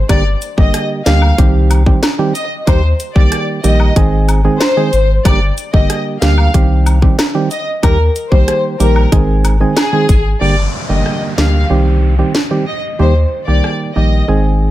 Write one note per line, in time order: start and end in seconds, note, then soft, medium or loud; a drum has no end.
0.09 0.35 G1 loud
0.09 0.23 D3 medium
0.09 0.24 G3 medium
0.09 0.24 A#3 medium
0.09 0.24 G4 loud
0.09 0.21 D5 loud
0.09 kick loud
0.09 closed hi-hat medium
0.09 high woodblock medium
0.41 closed hi-hat soft
0.41 cabasa medium
0.57 0.71 G1 medium
0.57 1.02 D3 medium
0.57 1.02 G3 medium
0.57 1.02 A#3 medium
0.57 1.02 G4 medium
0.57 0.82 D#5 medium
0.57 kick medium
0.74 cross-stick medium
0.74 closed hi-hat medium
1.06 1.32 D2 loud
1.06 1.36 D3 medium
1.06 1.36 G3 medium
1.06 1.36 A#3 medium
1.06 1.36 G4 medium
1.06 1.30 F5 medium
1.06 snare loud
1.06 closed hi-hat medium
1.06 cabasa medium
1.22 high woodblock medium
1.38 1.90 C2 loud
1.38 1.83 D#3 loud
1.38 1.83 G3 medium
1.38 1.83 C4 medium
1.38 1.83 G4 loud
1.38 kick medium
1.38 closed hi-hat medium
1.70 closed hi-hat medium
1.70 cabasa medium
1.70 high woodblock medium
1.86 2.01 D#3 medium
1.86 2.01 G3 medium
1.86 2.01 C4 medium
1.86 2.01 G4 medium
1.86 kick medium
2.03 snare loud
2.03 closed hi-hat medium
2.03 high woodblock medium
2.19 2.33 D#3 medium
2.19 2.33 G3 medium
2.19 2.33 C4 medium
2.19 2.33 G4 medium
2.35 2.47 D#5 medium
2.35 closed hi-hat soft
2.35 cabasa medium
2.67 2.93 D#2 loud
2.67 2.81 D#3 medium
2.67 2.82 G3 medium
2.67 2.82 A#3 medium
2.67 2.82 G4 loud
2.67 2.79 C5 loud
2.67 kick loud
2.67 closed hi-hat medium
2.67 high woodblock medium
3.00 closed hi-hat medium
3.00 cabasa medium
3.15 3.29 C2 medium
3.15 3.60 D#3 medium
3.15 3.60 G3 medium
3.15 3.60 A#3 medium
3.15 3.60 G4 medium
3.15 3.40 D5 medium
3.15 kick medium
3.32 cross-stick medium
3.32 closed hi-hat medium
3.64 3.90 A#1 medium
3.64 3.93 D#3 medium
3.64 3.94 G3 medium
3.64 3.94 A#3 medium
3.64 3.94 G4 medium
3.64 3.88 D#5 medium
3.64 closed hi-hat medium
3.64 cabasa medium
3.80 high woodblock medium
3.96 4.48 G#1 loud
3.96 4.41 D#3 loud
3.96 4.41 G#3 medium
3.96 4.41 C4 medium
3.96 4.41 G#4 loud
3.96 kick loud
3.96 closed hi-hat medium
4.29 closed hi-hat medium
4.29 cabasa medium
4.29 high woodblock medium
4.44 4.59 D#3 medium
4.44 4.59 G#3 medium
4.44 4.59 C4 medium
4.44 4.59 G#4 medium
4.61 5.06 C5 medium
4.61 snare loud
4.61 closed hi-hat medium
4.61 high woodblock medium
4.77 4.91 D#3 medium
4.77 4.91 G#3 medium
4.77 4.91 C4 medium
4.77 4.91 G#4 medium
4.93 5.19 G#1 loud
4.93 closed hi-hat soft
4.93 cabasa medium
5.25 5.51 G1 loud
5.25 5.39 D3 medium
5.25 5.39 G3 medium
5.25 5.40 A#3 medium
5.25 5.40 G4 loud
5.25 5.37 D5 loud
5.25 kick loud
5.25 closed hi-hat medium
5.25 high woodblock medium
5.57 closed hi-hat medium
5.57 cabasa medium
5.73 5.87 G1 medium
5.73 6.18 D3 medium
5.73 6.18 G3 medium
5.73 6.18 A#3 medium
5.73 6.18 G4 medium
5.73 5.98 D#5 medium
5.73 kick medium
5.90 cross-stick medium
5.90 closed hi-hat medium
6.21 6.48 D2 loud
6.21 6.51 D3 medium
6.21 6.52 G3 medium
6.21 6.52 A#3 medium
6.21 6.52 G4 medium
6.21 6.46 F5 medium
6.21 snare loud
6.21 closed hi-hat medium
6.21 cabasa medium
6.38 high woodblock medium
6.54 7.06 C2 loud
6.54 6.99 D#3 loud
6.54 6.99 G3 medium
6.54 6.99 C4 medium
6.54 6.99 G4 loud
6.54 kick medium
6.54 closed hi-hat medium
6.86 closed hi-hat medium
6.86 cabasa medium
6.86 high woodblock medium
7.02 7.17 D#3 medium
7.02 7.17 G3 medium
7.02 7.17 C4 medium
7.02 7.17 G4 medium
7.02 kick medium
7.19 snare loud
7.19 closed hi-hat medium
7.19 high woodblock medium
7.34 7.49 D#3 medium
7.34 7.49 G3 medium
7.34 7.49 C4 medium
7.34 7.49 G4 medium
7.51 7.63 D#5 medium
7.51 closed hi-hat soft
7.51 cabasa medium
7.83 8.09 D#2 loud
7.83 7.97 D#3 medium
7.83 7.97 G3 medium
7.83 7.98 A#3 medium
7.83 7.98 G4 loud
7.83 7.95 A#4 loud
7.83 kick loud
7.83 closed hi-hat medium
7.83 high woodblock medium
8.16 closed hi-hat soft
8.16 cabasa medium
8.31 8.45 C2 medium
8.31 8.76 D#3 medium
8.31 8.76 G3 medium
8.31 8.76 A#3 medium
8.31 8.76 G4 medium
8.31 8.56 C5 medium
8.31 kick medium
8.48 cross-stick medium
8.48 closed hi-hat medium
8.80 9.06 A#1 medium
8.80 9.10 D#3 medium
8.80 9.10 G3 medium
8.80 9.10 A#3 medium
8.80 9.10 G4 medium
8.80 9.04 A#4 medium
8.80 closed hi-hat medium
8.80 cabasa medium
8.96 high woodblock medium
9.12 9.64 G#1 loud
9.12 9.57 D#3 medium
9.12 9.57 G#3 medium
9.12 9.57 C4 medium
9.12 9.57 G#4 loud
9.12 kick loud
9.12 closed hi-hat medium
9.45 closed hi-hat medium
9.45 cabasa medium
9.45 high woodblock medium
9.60 9.75 D#3 medium
9.60 9.75 G#3 medium
9.60 9.75 C4 medium
9.60 9.75 G#4 medium
9.77 10.22 G#4 medium
9.77 snare loud
9.77 closed hi-hat medium
9.77 high woodblock medium
9.93 10.07 D#3 medium
9.93 10.07 G#3 medium
9.93 10.07 C4 medium
9.93 10.07 G#4 medium
10.09 10.35 G#1 loud
10.09 kick medium
10.09 closed hi-hat soft
10.09 cabasa medium
10.41 10.67 G1 loud
10.41 10.55 D3 medium
10.41 10.56 G3 medium
10.41 10.56 A#3 medium
10.41 10.56 G4 loud
10.41 10.53 D5 medium
10.41 downlifter medium
10.89 11.03 G1 medium
10.89 11.34 D3 medium
10.89 11.34 G3 medium
10.89 11.34 A#3 medium
10.89 11.34 G4 medium
10.89 11.14 D#5 medium
11.06 cross-stick medium
11.38 11.64 D2 medium
11.38 11.68 D3 medium
11.38 11.68 G3 medium
11.38 11.68 A#3 medium
11.38 11.68 G4 medium
11.38 11.62 F5 medium
11.38 snare loud
11.70 12.22 C2 loud
11.70 12.15 D#3 medium
11.70 12.15 G3 medium
11.70 12.15 C4 medium
11.70 12.15 G4 loud
12.18 12.33 D#3 medium
12.18 12.33 G3 medium
12.18 12.33 C4 medium
12.18 12.33 G4 medium
12.35 snare loud
12.50 12.65 D#3 medium
12.50 12.65 G3 medium
12.50 12.65 C4 medium
12.50 12.65 G4 medium
12.67 12.79 D#5 medium
12.99 13.25 D#2 loud
12.99 13.14 D#3 medium
12.99 13.14 G3 medium
12.99 13.14 A#3 medium
12.99 13.14 G4 loud
12.99 13.12 C5 medium
13.47 13.61 C2 medium
13.47 13.92 D#3 medium
13.47 13.92 G3 medium
13.47 13.92 A#3 medium
13.47 13.92 G4 medium
13.47 13.72 D5 medium
13.64 cross-stick medium
13.96 14.22 A#1 medium
13.96 14.26 D#3 medium
13.96 14.26 G3 medium
13.96 14.26 A#3 medium
13.96 14.26 G4 medium
13.96 14.20 D#5 medium
14.28 14.71 G#1 loud
14.28 14.71 D#3 medium
14.28 14.71 G#3 medium
14.28 14.71 C4 medium
14.28 14.71 G#4 loud